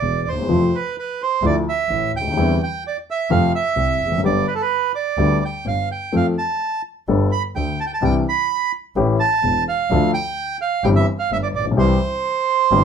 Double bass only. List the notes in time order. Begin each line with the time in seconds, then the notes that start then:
0.02 E1
0.25 D#2
0.48 F2
1.42 D2
1.89 A1
2.13 D2
2.36 E2
3.30 F2
3.76 C2
4.00 F1
4.22 G1
5.17 D2
5.66 G1
6.13 F2
7.08 G1
7.56 D2
8.02 C2
8.96 A1
9.43 E1
9.90 D2
10.83 G1
11.30 G1
11.53 A#1
11.77 C2
12.71 G1